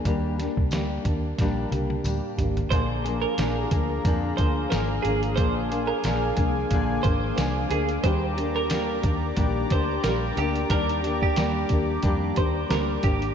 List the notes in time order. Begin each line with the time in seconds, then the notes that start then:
0.05 D#2 D#3 G3 A#3 D4 G4, kick, closed hi-hat
0.38 A#3 D4 G4, snare, closed hi-hat
0.57 C2, kick
0.70 D2 G3 A#3 D4, snare, closed hi-hat, tambourine
0.75 G4
1.04 D#2 A#3 D4 G4, kick, closed hi-hat
1.38 A#1 D#3 G3 A#3 D4 G4, kick, snare, closed hi-hat
1.71 C2 A#3 D4 G4, closed hi-hat, high tom
1.90 high tom
2.04 D2 G3 A#3 D4 G4, closed hi-hat, mid tom, tambourine
2.38 G#1 A#3 D4 G4, closed hi-hat, floor tom
2.57 closed hi-hat, floor tom
2.71 A#1 A#2 D3 F3 A#3 D4 G#4 C5 F5 A#5 D6, kick, closed hi-hat
3.04 A#3 D4 G#4, closed hi-hat
3.09 F3
3.22 A#4
3.37 A#1 F3 A#3 D4 G#4, snare, closed hi-hat, tambourine
3.71 D2 F3 A#3 D4 G#4, kick, closed hi-hat
4.05 F2 A#2 D3 F3 A#3 D4 G#4, kick, closed hi-hat
4.37 D2 A#3 D4 G#4 C5, kick, closed hi-hat
4.42 F3
4.70 G#1 F3 A#3 D4 A#4, snare, closed hi-hat, tambourine
4.75 G#4
5.03 G#1 D4 G#4, closed hi-hat
5.07 F3 A#3
5.23 closed hi-hat
5.36 A#1 A#2 D3 F3 A#3 C5 G#5, kick, closed hi-hat
5.40 D4 G#4
5.70 F3 A#3 D4 G#4, closed hi-hat
5.87 A#4
6.03 A#1 F3 A#3 D4 G#4, snare, closed hi-hat, tambourine
6.36 C2 F3 A#3 D4 G#4, kick, closed hi-hat
6.71 A#1 A#2 D3 F3 A#3 D4 G#4, kick, closed hi-hat
7.03 G#1 A#3 D4 G#4 C5, kick, closed hi-hat
7.08 F3
7.36 C2 F3 A#3 D4 A#4, snare, closed hi-hat, tambourine
7.40 G#4
7.69 D2 A#3 D4 G#4, closed hi-hat
7.74 F3
7.89 closed hi-hat
8.03 D#2 D#3 G3 A#3 D4 G4 C5 D5 A#5, kick, closed hi-hat
8.36 A#3 D4 G4, closed hi-hat
8.56 A#4
8.68 G3 A#3 D4, snare, closed hi-hat, tambourine
8.72 G4
9.02 D#2 D4 G4, kick, closed hi-hat
9.06 A#3
9.36 A#1 D#3 G3 A#3 D4 G4, kick, closed hi-hat
9.69 D2 A#3 D4 G4 C5, kick, closed hi-hat
10.04 A#1 G3 A#3 D4 G4 A#4, snare, closed hi-hat, tambourine
10.36 D2 D4 G4, closed hi-hat
10.40 A#3
10.56 closed hi-hat
10.70 D#2 D#3 G3 A#3 D4 G4 A#4, kick, closed hi-hat
10.89 closed hi-hat
11.02 A#3 D4 G4, snare, closed hi-hat
11.22 G4, kick
11.35 D#2 G3 A#3 D4, snare, closed hi-hat, tambourine
11.39 G4
11.69 D#2 A#3 D4 G4, kick, closed hi-hat
12.02 F2 D#3 G3 A#3 D4 G4, kick, closed hi-hat
12.34 D#2 D4 G4 C5, kick, closed hi-hat
12.38 A#3
12.68 D2 G3 A#3 D4 G4 A#4, snare, closed hi-hat, tambourine
13.01 G#1 A#3 D4 G4, kick, closed hi-hat
13.22 closed hi-hat